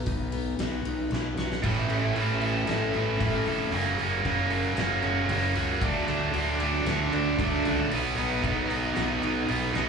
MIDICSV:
0, 0, Header, 1, 5, 480
1, 0, Start_track
1, 0, Tempo, 523286
1, 1501, Time_signature, 4, 2, 24, 8
1, 9070, End_track
2, 0, Start_track
2, 0, Title_t, "Steel-string acoustic guitar"
2, 0, Program_c, 0, 25
2, 0, Note_on_c, 0, 47, 72
2, 0, Note_on_c, 0, 59, 67
2, 56, Note_on_c, 0, 63, 67
2, 283, Note_off_c, 0, 59, 0
2, 294, Note_on_c, 0, 59, 66
2, 540, Note_on_c, 0, 66, 83
2, 772, Note_off_c, 0, 63, 0
2, 780, Note_off_c, 0, 47, 0
2, 783, Note_on_c, 0, 63, 68
2, 1004, Note_off_c, 0, 59, 0
2, 1015, Note_on_c, 0, 59, 69
2, 1249, Note_off_c, 0, 66, 0
2, 1260, Note_on_c, 0, 66, 73
2, 1498, Note_off_c, 0, 59, 0
2, 1501, Note_off_c, 0, 66, 0
2, 1502, Note_off_c, 0, 63, 0
2, 2451, Note_on_c, 0, 69, 77
2, 3163, Note_off_c, 0, 69, 0
2, 3174, Note_on_c, 0, 69, 69
2, 3418, Note_off_c, 0, 69, 0
2, 4373, Note_on_c, 0, 66, 87
2, 5091, Note_off_c, 0, 66, 0
2, 5095, Note_on_c, 0, 66, 72
2, 6293, Note_off_c, 0, 66, 0
2, 6297, Note_on_c, 0, 66, 87
2, 7008, Note_off_c, 0, 66, 0
2, 7019, Note_on_c, 0, 66, 79
2, 7260, Note_off_c, 0, 66, 0
2, 8230, Note_on_c, 0, 66, 77
2, 8934, Note_off_c, 0, 66, 0
2, 8945, Note_on_c, 0, 66, 73
2, 9070, Note_off_c, 0, 66, 0
2, 9070, End_track
3, 0, Start_track
3, 0, Title_t, "Overdriven electric guitar"
3, 0, Program_c, 1, 29
3, 1492, Note_on_c, 1, 45, 93
3, 1506, Note_on_c, 1, 52, 90
3, 1509, Note_on_c, 1, 57, 95
3, 1515, Note_on_c, 1, 61, 84
3, 1521, Note_on_c, 1, 64, 83
3, 1721, Note_off_c, 1, 64, 0
3, 1732, Note_on_c, 1, 64, 67
3, 1742, Note_off_c, 1, 61, 0
3, 1746, Note_on_c, 1, 61, 71
3, 1748, Note_off_c, 1, 57, 0
3, 1759, Note_on_c, 1, 57, 65
3, 1958, Note_off_c, 1, 52, 0
3, 1968, Note_off_c, 1, 57, 0
3, 1969, Note_on_c, 1, 52, 73
3, 1977, Note_off_c, 1, 45, 0
3, 1979, Note_on_c, 1, 57, 80
3, 1982, Note_off_c, 1, 64, 0
3, 1984, Note_off_c, 1, 61, 0
3, 1988, Note_on_c, 1, 61, 73
3, 1993, Note_on_c, 1, 64, 80
3, 2190, Note_off_c, 1, 64, 0
3, 2201, Note_on_c, 1, 64, 88
3, 2206, Note_off_c, 1, 57, 0
3, 2207, Note_off_c, 1, 61, 0
3, 2211, Note_on_c, 1, 61, 86
3, 2213, Note_off_c, 1, 52, 0
3, 2217, Note_on_c, 1, 57, 76
3, 2224, Note_on_c, 1, 52, 68
3, 2229, Note_on_c, 1, 45, 68
3, 2423, Note_off_c, 1, 52, 0
3, 2434, Note_on_c, 1, 52, 75
3, 2435, Note_off_c, 1, 57, 0
3, 2443, Note_off_c, 1, 61, 0
3, 2446, Note_on_c, 1, 57, 73
3, 2453, Note_off_c, 1, 64, 0
3, 2454, Note_on_c, 1, 61, 67
3, 2464, Note_on_c, 1, 64, 79
3, 2665, Note_off_c, 1, 64, 0
3, 2676, Note_on_c, 1, 64, 72
3, 2682, Note_off_c, 1, 61, 0
3, 2693, Note_on_c, 1, 61, 58
3, 2695, Note_off_c, 1, 57, 0
3, 2705, Note_off_c, 1, 45, 0
3, 2706, Note_on_c, 1, 57, 60
3, 2918, Note_off_c, 1, 52, 0
3, 2922, Note_on_c, 1, 45, 85
3, 2926, Note_off_c, 1, 57, 0
3, 2929, Note_on_c, 1, 52, 92
3, 2932, Note_off_c, 1, 61, 0
3, 2936, Note_off_c, 1, 64, 0
3, 2937, Note_on_c, 1, 57, 93
3, 2943, Note_on_c, 1, 61, 90
3, 2947, Note_on_c, 1, 64, 96
3, 3151, Note_off_c, 1, 64, 0
3, 3162, Note_on_c, 1, 64, 79
3, 3171, Note_off_c, 1, 61, 0
3, 3180, Note_off_c, 1, 57, 0
3, 3182, Note_on_c, 1, 61, 64
3, 3191, Note_on_c, 1, 57, 58
3, 3397, Note_off_c, 1, 45, 0
3, 3397, Note_off_c, 1, 64, 0
3, 3401, Note_off_c, 1, 52, 0
3, 3406, Note_on_c, 1, 42, 89
3, 3407, Note_off_c, 1, 61, 0
3, 3412, Note_off_c, 1, 57, 0
3, 3414, Note_on_c, 1, 49, 85
3, 3424, Note_on_c, 1, 54, 95
3, 3429, Note_on_c, 1, 58, 92
3, 3432, Note_on_c, 1, 61, 93
3, 3639, Note_off_c, 1, 61, 0
3, 3650, Note_on_c, 1, 61, 70
3, 3652, Note_off_c, 1, 58, 0
3, 3663, Note_on_c, 1, 58, 67
3, 3670, Note_off_c, 1, 54, 0
3, 3674, Note_on_c, 1, 54, 52
3, 3877, Note_off_c, 1, 49, 0
3, 3888, Note_on_c, 1, 49, 71
3, 3894, Note_off_c, 1, 42, 0
3, 3895, Note_off_c, 1, 54, 0
3, 3899, Note_off_c, 1, 58, 0
3, 3899, Note_on_c, 1, 54, 79
3, 3906, Note_off_c, 1, 61, 0
3, 3910, Note_on_c, 1, 58, 82
3, 3917, Note_on_c, 1, 61, 80
3, 4115, Note_off_c, 1, 61, 0
3, 4125, Note_off_c, 1, 58, 0
3, 4126, Note_on_c, 1, 61, 82
3, 4136, Note_on_c, 1, 58, 80
3, 4137, Note_off_c, 1, 49, 0
3, 4138, Note_off_c, 1, 54, 0
3, 4142, Note_on_c, 1, 54, 76
3, 4148, Note_on_c, 1, 49, 77
3, 4152, Note_on_c, 1, 42, 70
3, 4352, Note_off_c, 1, 49, 0
3, 4364, Note_on_c, 1, 49, 70
3, 4368, Note_off_c, 1, 54, 0
3, 4370, Note_off_c, 1, 58, 0
3, 4372, Note_on_c, 1, 54, 68
3, 4380, Note_off_c, 1, 61, 0
3, 4381, Note_on_c, 1, 58, 80
3, 4391, Note_on_c, 1, 61, 78
3, 4595, Note_off_c, 1, 61, 0
3, 4606, Note_on_c, 1, 61, 75
3, 4608, Note_off_c, 1, 58, 0
3, 4619, Note_on_c, 1, 58, 67
3, 4626, Note_off_c, 1, 42, 0
3, 4628, Note_off_c, 1, 54, 0
3, 4632, Note_on_c, 1, 54, 61
3, 4837, Note_off_c, 1, 49, 0
3, 4840, Note_on_c, 1, 42, 91
3, 4848, Note_on_c, 1, 49, 86
3, 4851, Note_off_c, 1, 58, 0
3, 4853, Note_off_c, 1, 54, 0
3, 4856, Note_off_c, 1, 61, 0
3, 4857, Note_on_c, 1, 54, 90
3, 4862, Note_on_c, 1, 58, 93
3, 4867, Note_on_c, 1, 61, 106
3, 5072, Note_off_c, 1, 61, 0
3, 5083, Note_on_c, 1, 61, 76
3, 5088, Note_off_c, 1, 58, 0
3, 5099, Note_on_c, 1, 58, 66
3, 5106, Note_off_c, 1, 54, 0
3, 5109, Note_on_c, 1, 54, 58
3, 5316, Note_off_c, 1, 42, 0
3, 5318, Note_off_c, 1, 61, 0
3, 5320, Note_off_c, 1, 49, 0
3, 5324, Note_on_c, 1, 50, 87
3, 5326, Note_off_c, 1, 58, 0
3, 5331, Note_off_c, 1, 54, 0
3, 5335, Note_on_c, 1, 54, 78
3, 5342, Note_on_c, 1, 57, 98
3, 5350, Note_on_c, 1, 62, 99
3, 5555, Note_off_c, 1, 62, 0
3, 5566, Note_on_c, 1, 62, 74
3, 5570, Note_off_c, 1, 57, 0
3, 5581, Note_on_c, 1, 57, 68
3, 5592, Note_off_c, 1, 54, 0
3, 5595, Note_on_c, 1, 54, 68
3, 5793, Note_off_c, 1, 50, 0
3, 5804, Note_on_c, 1, 50, 76
3, 5809, Note_off_c, 1, 54, 0
3, 5811, Note_off_c, 1, 57, 0
3, 5813, Note_on_c, 1, 54, 71
3, 5822, Note_off_c, 1, 62, 0
3, 5822, Note_on_c, 1, 57, 74
3, 5833, Note_on_c, 1, 62, 88
3, 6035, Note_off_c, 1, 62, 0
3, 6046, Note_on_c, 1, 62, 86
3, 6047, Note_off_c, 1, 57, 0
3, 6058, Note_on_c, 1, 57, 88
3, 6062, Note_off_c, 1, 54, 0
3, 6063, Note_off_c, 1, 50, 0
3, 6066, Note_on_c, 1, 54, 75
3, 6074, Note_on_c, 1, 50, 66
3, 6281, Note_off_c, 1, 50, 0
3, 6290, Note_off_c, 1, 54, 0
3, 6292, Note_on_c, 1, 50, 84
3, 6300, Note_off_c, 1, 57, 0
3, 6301, Note_on_c, 1, 54, 73
3, 6306, Note_off_c, 1, 62, 0
3, 6311, Note_on_c, 1, 57, 84
3, 6317, Note_on_c, 1, 62, 83
3, 6513, Note_off_c, 1, 62, 0
3, 6524, Note_on_c, 1, 62, 77
3, 6530, Note_off_c, 1, 57, 0
3, 6540, Note_off_c, 1, 54, 0
3, 6541, Note_on_c, 1, 57, 66
3, 6551, Note_on_c, 1, 54, 54
3, 6754, Note_off_c, 1, 50, 0
3, 6765, Note_on_c, 1, 50, 79
3, 6767, Note_off_c, 1, 54, 0
3, 6778, Note_off_c, 1, 57, 0
3, 6778, Note_on_c, 1, 54, 99
3, 6781, Note_off_c, 1, 62, 0
3, 6789, Note_on_c, 1, 57, 93
3, 6792, Note_on_c, 1, 62, 99
3, 6994, Note_off_c, 1, 62, 0
3, 7005, Note_off_c, 1, 57, 0
3, 7005, Note_on_c, 1, 62, 76
3, 7016, Note_on_c, 1, 57, 70
3, 7019, Note_off_c, 1, 54, 0
3, 7030, Note_on_c, 1, 54, 60
3, 7239, Note_off_c, 1, 50, 0
3, 7239, Note_off_c, 1, 62, 0
3, 7244, Note_off_c, 1, 57, 0
3, 7245, Note_on_c, 1, 47, 88
3, 7247, Note_off_c, 1, 54, 0
3, 7258, Note_on_c, 1, 54, 89
3, 7266, Note_on_c, 1, 59, 83
3, 7271, Note_on_c, 1, 63, 90
3, 7475, Note_off_c, 1, 63, 0
3, 7486, Note_on_c, 1, 63, 77
3, 7489, Note_off_c, 1, 59, 0
3, 7500, Note_on_c, 1, 59, 66
3, 7503, Note_off_c, 1, 54, 0
3, 7514, Note_on_c, 1, 54, 64
3, 7709, Note_off_c, 1, 47, 0
3, 7720, Note_on_c, 1, 47, 77
3, 7722, Note_off_c, 1, 54, 0
3, 7730, Note_off_c, 1, 59, 0
3, 7733, Note_on_c, 1, 54, 74
3, 7739, Note_off_c, 1, 63, 0
3, 7741, Note_on_c, 1, 59, 81
3, 7750, Note_on_c, 1, 63, 86
3, 7948, Note_off_c, 1, 63, 0
3, 7959, Note_on_c, 1, 63, 101
3, 7962, Note_off_c, 1, 59, 0
3, 7971, Note_off_c, 1, 54, 0
3, 7973, Note_on_c, 1, 59, 86
3, 7978, Note_off_c, 1, 47, 0
3, 7982, Note_on_c, 1, 54, 82
3, 7989, Note_on_c, 1, 47, 68
3, 8193, Note_off_c, 1, 47, 0
3, 8201, Note_off_c, 1, 54, 0
3, 8204, Note_on_c, 1, 47, 68
3, 8212, Note_off_c, 1, 59, 0
3, 8212, Note_on_c, 1, 54, 77
3, 8219, Note_off_c, 1, 63, 0
3, 8223, Note_on_c, 1, 59, 77
3, 8230, Note_on_c, 1, 63, 72
3, 8429, Note_off_c, 1, 63, 0
3, 8440, Note_on_c, 1, 63, 66
3, 8449, Note_off_c, 1, 59, 0
3, 8459, Note_off_c, 1, 54, 0
3, 8460, Note_on_c, 1, 59, 71
3, 8470, Note_on_c, 1, 54, 59
3, 8670, Note_off_c, 1, 47, 0
3, 8680, Note_off_c, 1, 54, 0
3, 8681, Note_on_c, 1, 47, 92
3, 8690, Note_off_c, 1, 59, 0
3, 8691, Note_on_c, 1, 54, 83
3, 8698, Note_off_c, 1, 63, 0
3, 8701, Note_on_c, 1, 59, 97
3, 8709, Note_on_c, 1, 63, 87
3, 8923, Note_off_c, 1, 63, 0
3, 8934, Note_on_c, 1, 63, 76
3, 8937, Note_off_c, 1, 59, 0
3, 8948, Note_off_c, 1, 54, 0
3, 8948, Note_on_c, 1, 59, 69
3, 8959, Note_on_c, 1, 54, 58
3, 9070, Note_off_c, 1, 47, 0
3, 9070, Note_off_c, 1, 54, 0
3, 9070, Note_off_c, 1, 59, 0
3, 9070, Note_off_c, 1, 63, 0
3, 9070, End_track
4, 0, Start_track
4, 0, Title_t, "Fingered electric bass"
4, 0, Program_c, 2, 33
4, 59, Note_on_c, 2, 35, 80
4, 489, Note_off_c, 2, 35, 0
4, 545, Note_on_c, 2, 35, 92
4, 758, Note_off_c, 2, 35, 0
4, 776, Note_on_c, 2, 35, 82
4, 992, Note_off_c, 2, 35, 0
4, 1026, Note_on_c, 2, 35, 85
4, 1238, Note_off_c, 2, 35, 0
4, 1264, Note_on_c, 2, 35, 86
4, 1477, Note_off_c, 2, 35, 0
4, 1504, Note_on_c, 2, 33, 96
4, 1717, Note_off_c, 2, 33, 0
4, 1743, Note_on_c, 2, 33, 78
4, 1957, Note_off_c, 2, 33, 0
4, 1984, Note_on_c, 2, 33, 78
4, 2412, Note_off_c, 2, 33, 0
4, 2461, Note_on_c, 2, 33, 89
4, 2675, Note_off_c, 2, 33, 0
4, 2701, Note_on_c, 2, 33, 85
4, 2916, Note_off_c, 2, 33, 0
4, 2939, Note_on_c, 2, 33, 98
4, 3155, Note_off_c, 2, 33, 0
4, 3184, Note_on_c, 2, 29, 90
4, 3397, Note_off_c, 2, 29, 0
4, 3422, Note_on_c, 2, 30, 96
4, 3636, Note_off_c, 2, 30, 0
4, 3663, Note_on_c, 2, 30, 75
4, 3877, Note_off_c, 2, 30, 0
4, 3898, Note_on_c, 2, 30, 80
4, 4328, Note_off_c, 2, 30, 0
4, 4378, Note_on_c, 2, 30, 94
4, 4594, Note_off_c, 2, 30, 0
4, 4615, Note_on_c, 2, 30, 92
4, 4832, Note_off_c, 2, 30, 0
4, 4851, Note_on_c, 2, 30, 93
4, 5070, Note_off_c, 2, 30, 0
4, 5090, Note_on_c, 2, 37, 97
4, 5309, Note_off_c, 2, 37, 0
4, 5335, Note_on_c, 2, 38, 97
4, 5552, Note_off_c, 2, 38, 0
4, 5569, Note_on_c, 2, 38, 75
4, 5789, Note_off_c, 2, 38, 0
4, 5809, Note_on_c, 2, 38, 81
4, 6243, Note_off_c, 2, 38, 0
4, 6289, Note_on_c, 2, 38, 95
4, 6508, Note_off_c, 2, 38, 0
4, 6536, Note_on_c, 2, 38, 87
4, 6753, Note_off_c, 2, 38, 0
4, 6775, Note_on_c, 2, 38, 89
4, 6992, Note_off_c, 2, 38, 0
4, 7020, Note_on_c, 2, 37, 96
4, 7235, Note_off_c, 2, 37, 0
4, 7252, Note_on_c, 2, 35, 94
4, 7471, Note_off_c, 2, 35, 0
4, 7497, Note_on_c, 2, 35, 84
4, 7713, Note_off_c, 2, 35, 0
4, 7738, Note_on_c, 2, 35, 89
4, 8168, Note_off_c, 2, 35, 0
4, 8227, Note_on_c, 2, 35, 97
4, 8438, Note_off_c, 2, 35, 0
4, 8464, Note_on_c, 2, 35, 92
4, 8677, Note_off_c, 2, 35, 0
4, 8705, Note_on_c, 2, 35, 95
4, 8917, Note_off_c, 2, 35, 0
4, 8945, Note_on_c, 2, 35, 88
4, 9070, Note_off_c, 2, 35, 0
4, 9070, End_track
5, 0, Start_track
5, 0, Title_t, "Drums"
5, 62, Note_on_c, 9, 36, 77
5, 65, Note_on_c, 9, 46, 66
5, 154, Note_off_c, 9, 36, 0
5, 156, Note_off_c, 9, 46, 0
5, 307, Note_on_c, 9, 46, 54
5, 399, Note_off_c, 9, 46, 0
5, 543, Note_on_c, 9, 46, 73
5, 552, Note_on_c, 9, 38, 106
5, 634, Note_off_c, 9, 46, 0
5, 644, Note_off_c, 9, 38, 0
5, 785, Note_on_c, 9, 46, 52
5, 876, Note_off_c, 9, 46, 0
5, 1036, Note_on_c, 9, 38, 64
5, 1128, Note_off_c, 9, 38, 0
5, 1270, Note_on_c, 9, 38, 81
5, 1362, Note_off_c, 9, 38, 0
5, 1393, Note_on_c, 9, 38, 91
5, 1485, Note_off_c, 9, 38, 0
5, 1502, Note_on_c, 9, 36, 106
5, 1504, Note_on_c, 9, 46, 80
5, 1504, Note_on_c, 9, 55, 85
5, 1594, Note_off_c, 9, 36, 0
5, 1595, Note_off_c, 9, 46, 0
5, 1595, Note_off_c, 9, 55, 0
5, 1738, Note_on_c, 9, 46, 56
5, 1830, Note_off_c, 9, 46, 0
5, 1982, Note_on_c, 9, 46, 66
5, 2074, Note_off_c, 9, 46, 0
5, 2219, Note_on_c, 9, 46, 50
5, 2310, Note_off_c, 9, 46, 0
5, 2460, Note_on_c, 9, 46, 72
5, 2469, Note_on_c, 9, 38, 110
5, 2551, Note_off_c, 9, 46, 0
5, 2561, Note_off_c, 9, 38, 0
5, 2704, Note_on_c, 9, 46, 52
5, 2796, Note_off_c, 9, 46, 0
5, 2940, Note_on_c, 9, 36, 84
5, 2943, Note_on_c, 9, 46, 81
5, 3032, Note_off_c, 9, 36, 0
5, 3035, Note_off_c, 9, 46, 0
5, 3186, Note_on_c, 9, 46, 58
5, 3278, Note_off_c, 9, 46, 0
5, 3426, Note_on_c, 9, 46, 83
5, 3518, Note_off_c, 9, 46, 0
5, 3665, Note_on_c, 9, 46, 61
5, 3757, Note_off_c, 9, 46, 0
5, 3899, Note_on_c, 9, 36, 80
5, 3902, Note_on_c, 9, 46, 70
5, 3990, Note_off_c, 9, 36, 0
5, 3993, Note_off_c, 9, 46, 0
5, 4140, Note_on_c, 9, 46, 61
5, 4232, Note_off_c, 9, 46, 0
5, 4375, Note_on_c, 9, 46, 76
5, 4384, Note_on_c, 9, 38, 104
5, 4467, Note_off_c, 9, 46, 0
5, 4476, Note_off_c, 9, 38, 0
5, 4622, Note_on_c, 9, 46, 55
5, 4714, Note_off_c, 9, 46, 0
5, 4863, Note_on_c, 9, 46, 74
5, 4955, Note_off_c, 9, 46, 0
5, 5101, Note_on_c, 9, 46, 54
5, 5193, Note_off_c, 9, 46, 0
5, 5334, Note_on_c, 9, 36, 116
5, 5335, Note_on_c, 9, 46, 81
5, 5426, Note_off_c, 9, 36, 0
5, 5426, Note_off_c, 9, 46, 0
5, 5583, Note_on_c, 9, 46, 55
5, 5675, Note_off_c, 9, 46, 0
5, 5818, Note_on_c, 9, 46, 64
5, 5910, Note_off_c, 9, 46, 0
5, 6058, Note_on_c, 9, 46, 52
5, 6150, Note_off_c, 9, 46, 0
5, 6295, Note_on_c, 9, 46, 68
5, 6304, Note_on_c, 9, 38, 107
5, 6387, Note_off_c, 9, 46, 0
5, 6396, Note_off_c, 9, 38, 0
5, 6541, Note_on_c, 9, 46, 48
5, 6632, Note_off_c, 9, 46, 0
5, 6775, Note_on_c, 9, 46, 69
5, 6776, Note_on_c, 9, 36, 91
5, 6867, Note_off_c, 9, 46, 0
5, 6868, Note_off_c, 9, 36, 0
5, 7016, Note_on_c, 9, 46, 58
5, 7108, Note_off_c, 9, 46, 0
5, 7259, Note_on_c, 9, 46, 84
5, 7351, Note_off_c, 9, 46, 0
5, 7500, Note_on_c, 9, 46, 60
5, 7591, Note_off_c, 9, 46, 0
5, 7736, Note_on_c, 9, 46, 65
5, 7738, Note_on_c, 9, 36, 81
5, 7827, Note_off_c, 9, 46, 0
5, 7830, Note_off_c, 9, 36, 0
5, 7981, Note_on_c, 9, 46, 62
5, 8073, Note_off_c, 9, 46, 0
5, 8217, Note_on_c, 9, 46, 76
5, 8226, Note_on_c, 9, 38, 108
5, 8308, Note_off_c, 9, 46, 0
5, 8318, Note_off_c, 9, 38, 0
5, 8457, Note_on_c, 9, 46, 54
5, 8548, Note_off_c, 9, 46, 0
5, 8701, Note_on_c, 9, 46, 79
5, 8793, Note_off_c, 9, 46, 0
5, 8950, Note_on_c, 9, 38, 65
5, 9041, Note_off_c, 9, 38, 0
5, 9070, End_track
0, 0, End_of_file